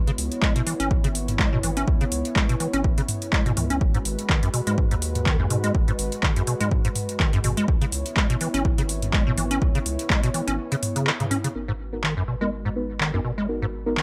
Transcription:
Already playing: analog synth pad B3 E4 C#5
0.07 acid bass C#3, closed hi-hat
0.18 sub bass C#2, open hi-hat
0.32 closed hi-hat
0.42 acid bass G#3, kick, clap
0.56 acid bass B2, closed hi-hat
0.66 acid bass E3, open hi-hat
0.80 sub bass G#1, acid bass C#4, closed hi-hat
0.91 kick
1.04 sub bass G#1, acid bass C#3, closed hi-hat
1.15 open hi-hat
1.28 closed hi-hat, mid tom
1.39 acid bass G#3, kick, clap
1.53 acid bass B2, mid tom
1.63 sub bass G#1, acid bass E3, open hi-hat
1.77 acid bass C#4, closed hi-hat
1.88 sub bass C#2, kick
2.01 acid bass C#3, closed hi-hat
2.12 sub bass C#2, open hi-hat
2.25 closed hi-hat
2.36 acid bass G#3, kick, clap
2.49 acid bass B2, closed hi-hat
2.60 acid bass E3, open hi-hat
2.73 sub bass G#1, acid bass C#4, closed hi-hat
2.84 kick
2.98 acid bass C#3, closed hi-hat
3.08 mid tom, open hi-hat
3.22 closed hi-hat
3.33 acid bass G#3, kick, clap
3.46 sub bass G#1, acid bass B2, closed hi-hat, mid tom
3.57 sub bass C#2, acid bass E3, mid tom, open hi-hat
3.70 sub bass C#2, acid bass C#4, closed hi-hat
3.81 sub bass G#1, analog synth pad G#3 F#4 B4, kick
3.94 acid bass G#2, closed hi-hat
4.05 sub bass G#1, open hi-hat
4.19 closed hi-hat
4.29 acid bass D#3, kick, clap
4.43 acid bass F#2, closed hi-hat
4.54 acid bass B2, open hi-hat
4.67 sub bass G#2, acid bass G#3, closed hi-hat
4.78 kick
4.91 sub bass D#2, acid bass G#2, closed hi-hat
5.02 open hi-hat
5.15 closed hi-hat, mid tom
5.26 acid bass D#3, kick, clap
5.39 acid bass F#2, mid tom
5.50 sub bass G#2, acid bass B2, open hi-hat
5.64 acid bass G#3, closed hi-hat
5.75 sub bass G#1, kick
5.88 acid bass G#2, closed hi-hat
5.99 sub bass G#1, open hi-hat
6.12 closed hi-hat
6.23 acid bass D#3, kick, clap
6.36 acid bass F#2, closed hi-hat
6.47 acid bass B2, open hi-hat
6.60 sub bass G#2, acid bass G#3, closed hi-hat
6.71 kick
6.85 acid bass G#2, closed hi-hat
6.96 mid tom, open hi-hat
7.09 closed hi-hat
7.20 acid bass D#3, kick, clap
7.33 acid bass F#2, closed hi-hat, mid tom
7.44 sub bass G#1, acid bass B2, mid tom, open hi-hat
7.57 acid bass G#3, closed hi-hat
7.68 sub bass C#2, analog synth pad B3 E4 C#5, kick
7.81 acid bass C#3, closed hi-hat
7.92 sub bass C#2, open hi-hat
8.06 closed hi-hat
8.16 acid bass G#3, kick, clap
8.30 acid bass B2, closed hi-hat
8.41 acid bass E3, open hi-hat
8.54 sub bass G#1, acid bass C#4, closed hi-hat
8.65 kick
8.78 sub bass G#1, acid bass C#3, closed hi-hat
8.89 open hi-hat
9.02 closed hi-hat, mid tom
9.13 acid bass G#3, kick, clap
9.27 acid bass B2, mid tom
9.37 sub bass G#1, acid bass E3, open hi-hat
9.51 acid bass C#4, closed hi-hat
9.62 sub bass C#2, kick
9.75 acid bass C#3, closed hi-hat
9.86 sub bass C#2, open hi-hat
9.99 closed hi-hat
10.10 acid bass G#3, kick, clap
10.23 acid bass B2, closed hi-hat
10.34 acid bass E3, open hi-hat
10.47 sub bass G#1, acid bass C#4, closed hi-hat
10.72 acid bass C#3, closed hi-hat
10.83 mid tom, open hi-hat
10.96 acid bass C#3, closed hi-hat
11.07 acid bass D#3, clap
11.20 acid bass C#3, closed hi-hat, mid tom
11.31 acid bass C#4, mid tom, open hi-hat
11.44 acid bass C#3, closed hi-hat
11.55 sub bass G#1, analog synth pad G#3 F#4 B4, synth stab B3 D#4 F#4 A#4
11.68 acid bass G#2
11.93 synth stab B3 D#4 F#4 A#4
12.03 acid bass D#3, clap
12.17 acid bass F#2
12.28 acid bass B2
12.41 acid bass G#3, synth stab B3 D#4 F#4 A#4
12.65 acid bass G#2
12.76 synth stab B3 D#4 F#4 B4
13.00 acid bass D#3, clap
13.14 acid bass F#2, synth stab B3 D#4 F#4 A#4
13.24 acid bass B2
13.38 acid bass G#3
13.49 synth stab B3 D#4 F#4 A#4
13.62 acid bass G#2
13.86 synth stab B3 D#4 F#4 A#4
13.97 acid bass D#3, clap

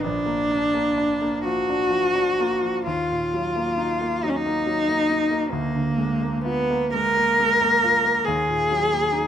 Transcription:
0.04 grand piano A#1, cello D4
0.26 grand piano A#3
0.52 grand piano D4
0.74 grand piano A#3
0.98 grand piano D4
1.22 grand piano A#3
1.45 grand piano F3, cello F#4
1.70 grand piano D4
1.90 grand piano F3
2.15 grand piano D4
2.40 grand piano A#3
2.63 grand piano F3
2.86 grand piano D#2, cello F4
3.12 grand piano A#2
3.34 grand piano F#3
3.56 grand piano A#3
3.78 grand piano D#4
4.01 grand piano A#3
4.23 grand piano F#3, cello D#4
4.29 cello C#4
4.36 cello D#4
4.46 grand piano A#3
4.67 grand piano F#3
4.89 grand piano A#3
5.10 grand piano D#4
5.31 grand piano A#3
5.51 grand piano D2, cello A#3
5.74 grand piano D3
5.98 grand piano G#3
6.22 grand piano A#3
6.45 cello B3, grand piano F4
6.70 grand piano A#3
6.94 grand piano G#3, cello A#4
7.17 grand piano A#3
7.40 grand piano G#3
7.62 grand piano A#3
7.84 grand piano F4
8.05 grand piano A#3
8.25 grand piano D#2, cello G#4
8.49 grand piano A#2
8.71 grand piano F#3
8.92 grand piano A#3
9.13 grand piano D#4

